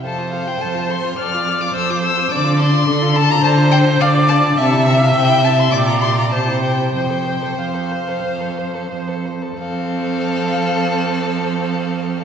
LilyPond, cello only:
\new Staff \with { instrumentName = "Cello" } { \clef bass \time 4/4 \key f \major \tempo 4 = 102 f,4 f,4 f,4 f,4 | d4 d4 d4 d4 | c4 c4 bes,4 c4 | f,4 f,4 f,4 f,4 |
f,1 | }